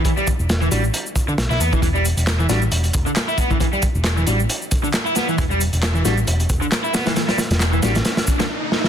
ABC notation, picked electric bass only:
X:1
M:4/4
L:1/16
Q:"Swing 16ths" 1/4=135
K:Em
V:1 name="Picked electric bass" clef=bass
z3 E,,,3 A,,, z4 z B,,, B,,, E,, z | E,,,3 E,,,3 A,,, z E,,, z E,,, z4 z | z3 E,,,3 A,,, z8 z | E,,,3 E,,,3 A,,, z E,,, z E,,, z4 z |
z3 E,,,3 A,,, z8 z |]